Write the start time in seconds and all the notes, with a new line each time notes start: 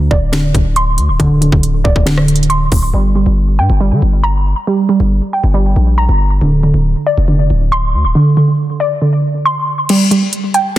Already playing: D3
0.11 D1 D5, kick
0.32 D3, finger snap, snare, closed hi-hat
0.55 D1, kick, closed hi-hat
0.76 C6, closed hi-hat
0.98 D2, closed hi-hat
1.09 D1
1.20 D1 D3, kick, closed hi-hat
1.41 D3, closed hi-hat
1.52 D1, kick
1.63 closed hi-hat
1.84 D1 D5, kick
1.96 kick
2.06 D3, finger snap, snare, closed hi-hat
2.18 cross-stick
2.28 closed hi-hat
2.36 closed hi-hat
2.43 closed hi-hat
2.50 C6, closed hi-hat
2.72 D1, kick, open hi-hat
2.94 G1 G3
3.15 G3
3.26 G1
3.59 G2 G5
3.70 G1
3.81 G3
3.91 D3
4.02 G1
4.23 A#5
4.67 G3
4.89 G3
5.00 G1
5.33 G5
5.44 G1
5.54 G3
5.76 A#1
5.98 A#5
6.09 G1
6.41 D1 D3
6.63 D3
6.74 D1
7.06 D5
7.18 F1
7.28 D3
7.50 D1
7.72 C6
7.94 D2
8.04 D1
8.15 D3
8.37 D3
8.80 D5
9.02 D3
9.45 C6
9.89 G3, closed hi-hat, crash
10.11 G3, closed hi-hat
10.33 closed hi-hat
10.54 G5, closed hi-hat